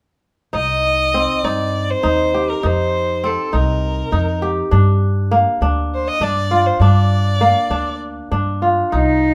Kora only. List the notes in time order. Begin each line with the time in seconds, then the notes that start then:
0.53 D#4
1.14 C4
1.44 D#4
2.03 D#4
2.34 G4
2.63 D#4
3.24 C4
3.53 D#4
4.12 D#4
4.42 G4
4.71 D4
5.31 A#3
5.62 D4
6.21 D4
6.51 F4
6.81 D4
7.41 A#3
7.71 D4
8.31 D4
8.62 F4
8.92 D#4